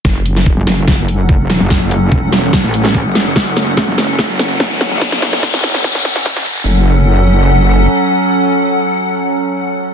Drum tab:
HH |--x---o---x---x-|--x---o---x---x-|--x---o---x---x-|--x---ox--x-----|
SD |o--o--o-o-----o-|o-----o-o--o--o-|o-o-o-o-o-o-o-o-|oooooooooooooo--|
BD |o---o---o---o---|o---o---o---o---|o---o---o---o---|o---o---o---o-o-|

HH |----------------|----------------|
SD |----------------|----------------|
BD |----------------|----------------|